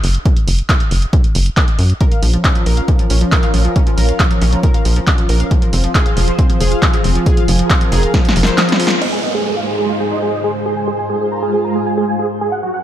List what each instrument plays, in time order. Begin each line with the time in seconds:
0.04 analog synth bass F#1, open hi-hat
0.15 closed hi-hat
0.25 kick, closed hi-hat
0.37 closed hi-hat
0.47 analog synth bass F#1, open hi-hat
0.59 closed hi-hat
0.69 kick, clap, closed hi-hat
0.80 closed hi-hat
0.91 analog synth bass F#1, open hi-hat
1.02 closed hi-hat
1.13 kick, closed hi-hat
1.24 closed hi-hat
1.35 analog synth bass F#1, open hi-hat
1.46 closed hi-hat
1.57 kick, clap, closed hi-hat
1.68 closed hi-hat
1.79 analog synth bass F#2, open hi-hat
1.90 closed hi-hat
2.01 analog synth pad C#4 F4 A#4, synth pluck A#4, kick, closed hi-hat
2.12 synth pluck F5, closed hi-hat
2.23 analog synth bass A#1, synth pluck F3, open hi-hat
2.33 synth pluck F3, closed hi-hat
2.44 synth pluck C#4, kick, clap, closed hi-hat
2.55 synth pluck F3, closed hi-hat
2.66 analog synth bass A#1, synth pluck A#4, open hi-hat
2.77 synth pluck F5, closed hi-hat
2.88 synth pluck F3, kick, closed hi-hat
2.99 synth pluck F3, closed hi-hat
3.10 analog synth bass A#1, synth pluck C#4, open hi-hat
3.21 synth pluck F3, closed hi-hat
3.32 synth pluck A#4, kick, clap, closed hi-hat
3.43 synth pluck F5, clap, closed hi-hat
3.54 analog synth bass A#1, synth pluck F3, open hi-hat
3.65 synth pluck F3, closed hi-hat
3.76 synth pluck C#4, kick, closed hi-hat
3.87 synth pluck F3, closed hi-hat
3.98 analog synth bass A#1, synth pluck A#4, open hi-hat
4.09 synth pluck F5, closed hi-hat
4.20 synth pluck F3, kick, clap, closed hi-hat
4.31 synth pluck F3, closed hi-hat
4.42 analog synth bass A#1, synth pluck C#4, open hi-hat
4.53 synth pluck F3, closed hi-hat
4.63 synth pluck A#4, kick, closed hi-hat
4.74 synth pluck F5, closed hi-hat
4.85 analog synth bass A#1, synth pluck F3, open hi-hat
4.96 synth pluck F3, closed hi-hat
5.07 synth pluck C#4, kick, clap, closed hi-hat
5.18 synth pluck F3, closed hi-hat
5.29 analog synth bass A#1, synth pluck A#4, open hi-hat
5.40 synth pluck F5, closed hi-hat
5.51 synth pluck F3, analog synth pad F3 F4 G#4 C5, kick, closed hi-hat
5.62 synth pluck F3, closed hi-hat
5.73 analog synth bass F1, synth pluck C4, open hi-hat
5.84 synth pluck F3, closed hi-hat
5.95 synth pluck G#4, kick, clap, closed hi-hat
6.06 synth pluck F5, closed hi-hat
6.17 analog synth bass F1, synth pluck F3, open hi-hat
6.28 synth pluck F3, closed hi-hat
6.39 synth pluck C4, kick, closed hi-hat
6.50 synth pluck F3, closed hi-hat
6.61 analog synth bass F1, synth pluck G#4, open hi-hat
6.72 synth pluck F5, closed hi-hat
6.82 synth pluck F3, kick, clap, closed hi-hat
6.93 synth pluck F3, clap, closed hi-hat
7.04 analog synth bass F1, synth pluck C4, open hi-hat
7.15 synth pluck F3, closed hi-hat
7.26 synth pluck G#4, analog synth pad A#4, kick, closed hi-hat
7.37 synth pluck F5, closed hi-hat
7.48 analog synth bass F1, synth pluck F3, open hi-hat
7.59 synth pluck F3, closed hi-hat
7.70 synth pluck C4, kick, clap, closed hi-hat
7.81 synth pluck F3, closed hi-hat
7.92 analog synth bass F1, synth pluck G#4, open hi-hat
8.03 synth pluck F5, closed hi-hat
8.14 synth pluck F3, kick, snare, closed hi-hat
8.25 synth pluck F3, snare, closed hi-hat
8.36 analog synth bass F1, synth pluck F3, open hi-hat
8.43 synth pluck C5, snare, closed hi-hat
8.58 synth pluck F3, snare, clap, closed hi-hat
8.69 synth pluck C4, snare, closed hi-hat
8.80 synth pluck F3, open hi-hat
8.87 synth pluck C5, snare, closed hi-hat
9.02 analog synth pad G#2 G#3 D#4 C5, supersaw synth D#5, crash, downlifter
9.12 supersaw synth G#4
9.23 supersaw synth D#5
9.34 supersaw synth G#4
9.45 supersaw synth G#4
9.56 supersaw synth F5
9.67 supersaw synth G#4
9.78 supersaw synth G#4
9.89 supersaw synth F5
10.00 supersaw synth G#4
10.11 supersaw synth D#5
10.22 supersaw synth G#4
10.33 supersaw synth D#5
10.44 supersaw synth G#4
10.66 supersaw synth G#4
10.77 analog synth pad F4, supersaw synth G#5
10.87 supersaw synth G#4
10.99 supersaw synth G#5
11.10 supersaw synth G#4
11.21 supersaw synth G#4
11.32 supersaw synth A#5
11.42 supersaw synth G#4
11.53 supersaw synth G#4
11.65 supersaw synth A#5
11.75 supersaw synth G#4
11.86 supersaw synth G#5
11.97 supersaw synth G#4
12.08 supersaw synth G#5
12.19 supersaw synth G#4
12.41 supersaw synth G#4
12.52 analog synth pad F#2 F#3 C#4 A#4, supersaw synth F#5
12.63 supersaw synth F#4
12.74 supersaw synth F#5